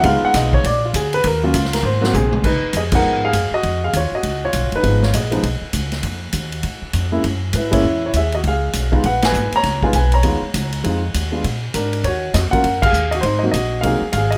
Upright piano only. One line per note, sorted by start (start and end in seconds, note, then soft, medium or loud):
0.01 0.64 G#3 medium
0.01 0.64 B3 medium
0.01 0.64 D#4 medium
0.01 0.64 F4 medium
0.01 0.03 E5 medium
0.01 0.23 F5 medium
0.25 0.35 F#5 loud
0.37 0.54 D#5 medium
0.54 0.64 C#5 loud
0.66 0.83 D5 loud
0.85 0.95 F4 medium
0.96 1.13 G#4 medium
1.14 1.24 B4 loud
1.26 1.43 A#4 medium
1.43 1.53 F#3 medium
1.43 1.53 A#3 medium
1.43 1.54 C#4 medium
1.43 1.53 F4 medium
1.55 1.73 F4 medium
1.73 1.84 A#4 medium
1.85 2.35 C5 medium
2.01 2.12 F#3 medium
2.01 2.12 A#3 medium
2.01 2.12 C4 medium
2.01 2.12 F#4 medium
2.15 2.43 C4 medium
2.15 2.45 G#4 medium
2.45 2.73 D#4 medium
2.45 2.75 B4 medium
2.77 2.83 G#4 medium
2.77 2.82 D#5 medium
2.92 3.31 F3 medium
2.92 3.31 G#3 medium
2.92 3.32 B3 medium
2.92 3.32 D#4 medium
2.92 3.22 A#4 medium
2.92 3.25 F#5 loud
3.25 3.52 G#4 medium
3.25 3.52 F5 loud
3.54 3.81 F#4 medium
3.54 3.84 D#5 loud
3.84 3.94 G#4 medium
3.84 3.95 F5 medium
3.97 4.13 F4 medium
3.97 4.14 C#5 medium
4.15 4.42 F#4 medium
4.15 4.45 D#5 medium
4.45 4.73 F4 medium
4.45 4.76 C#5 medium
4.76 4.82 D#4 medium
4.76 5.01 B4 loud
4.83 5.00 F3 medium
4.83 5.00 G#3 medium
4.83 5.00 B3 medium
4.83 5.01 D#4 medium
5.04 5.14 F4 medium
5.04 5.14 C#5 medium
5.15 5.60 G#4 medium
5.15 5.60 D#5 medium
5.31 5.42 F3 medium
5.31 5.42 G#3 medium
5.31 5.43 B3 medium
5.31 5.43 D#4 medium
7.12 7.22 G#3 medium
7.12 7.22 A#3 medium
7.12 7.22 C#4 medium
7.12 7.22 E4 medium
7.56 7.70 E4 medium
7.56 7.72 B4 medium
7.71 7.82 G#3 medium
7.71 7.82 A#3 medium
7.71 7.82 C#4 medium
7.71 7.74 E4 medium
7.71 8.04 C#5 medium
7.75 8.02 E4 medium
8.06 8.16 E4 medium
8.06 8.16 C#5 medium
8.17 8.34 G#4 medium
8.17 8.34 E5 medium
8.35 8.40 F#4 medium
8.35 8.39 D#5 medium
8.47 9.02 G#4 medium
8.47 9.07 F5 medium
8.92 9.02 G#3 medium
8.92 9.02 B3 medium
8.92 9.03 D#4 medium
8.92 9.03 F4 medium
9.06 9.22 B4 medium
9.06 9.22 F#5 loud
9.25 9.52 B4 medium
9.25 9.55 G#5 loud
9.56 9.83 C#5 medium
9.56 9.82 A#5 loud
9.83 9.93 G#3 medium
9.83 9.93 B3 medium
9.83 9.93 D#4 medium
9.83 9.93 F4 medium
9.83 9.90 B4 medium
9.83 9.89 G#5 medium
9.95 10.12 B4 medium
9.95 10.14 G#5 medium
10.14 10.81 C#5 medium
10.14 10.99 A#5 medium
10.23 10.40 G#3 medium
10.23 10.41 B3 medium
10.23 10.41 D#4 medium
10.23 10.41 F4 medium
10.84 11.00 G#3 medium
10.84 11.01 C4 medium
10.84 11.01 D#4 medium
10.84 11.01 F4 medium
11.32 11.42 G#3 medium
11.32 11.42 B3 soft
11.32 11.42 D4 medium
11.32 11.43 F4 medium
11.74 12.03 D4 medium
11.74 12.05 A#4 medium
12.05 12.34 F#4 medium
12.05 12.35 C#5 medium
12.34 12.43 F#4 medium
12.34 12.39 D#5 medium
12.51 12.62 F#3 medium
12.51 12.62 A#3 medium
12.51 12.63 C#4 medium
12.51 12.62 F4 medium
12.51 12.81 A#4 medium
12.51 12.80 F#5 loud
12.82 13.12 G#4 medium
12.82 13.13 F5 loud
13.11 13.19 F#4 medium
13.11 13.16 D#5 medium
13.21 13.42 C5 medium
13.26 13.42 D#4 medium
13.39 13.52 F#3 medium
13.39 13.44 D#5 medium
13.43 13.53 A#3 medium
13.43 13.53 C4 medium
13.43 13.53 D#4 medium
13.43 13.48 F#4 medium
13.51 13.83 D#5 medium
13.56 13.83 F#4 medium
13.81 14.00 F#3 medium
13.81 14.00 A#3 medium
13.81 14.00 C4 medium
13.81 14.00 D#4 medium
13.81 14.10 F5 loud
13.86 14.12 G#4 medium
14.12 14.32 F5 medium
14.17 14.33 G#4 medium
14.31 14.38 D#5 medium